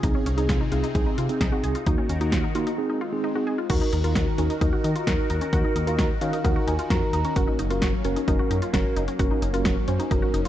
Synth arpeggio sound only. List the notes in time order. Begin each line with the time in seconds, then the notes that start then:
0.03 D#4
0.15 C#4
0.26 C#4
0.38 D#4
0.49 F4
0.61 D#4
0.72 F4
0.83 D#4
1.06 D#4
1.18 F4
1.41 D#4
1.52 F#4
1.64 G#4
1.75 F4
1.87 D#4
1.98 C#4
2.09 C#4
2.21 D#4
2.32 F4
2.44 D#4
2.55 F4
2.67 D#4
2.90 D#4
3.01 F4
3.24 D#4
3.35 F#4
3.47 G#4
3.58 F4
3.70 F#4
3.81 D#4
3.93 D#4
4.04 F4
4.16 F#4
4.38 C#4
4.50 D#4
4.61 D#4
4.73 F#4
4.84 D#4
4.96 F4
5.07 F#4
5.30 D#4
5.41 C#4
5.53 F#4
5.64 D#4
5.76 D#4
5.87 F4
5.99 F#4
6.22 C#4
6.33 D#4
6.45 D#4
6.56 F#4
6.67 D#4
6.79 F4
6.90 F#4
7.13 D#4
7.25 C#4
7.36 F#4
7.48 D#4
7.59 D#4
7.71 F4
7.82 F#4
8.05 C#4
8.16 D#4
8.28 D#4
8.39 F#4
8.51 D#4
8.62 F4
8.74 F#4
8.96 D#4
9.08 C#4
9.19 F#4
9.31 D#4
9.42 D#4
9.54 F4
9.65 F#4
9.88 C#4
9.99 D#4
10.11 D#4
10.22 F#4
10.34 D#4
10.45 F4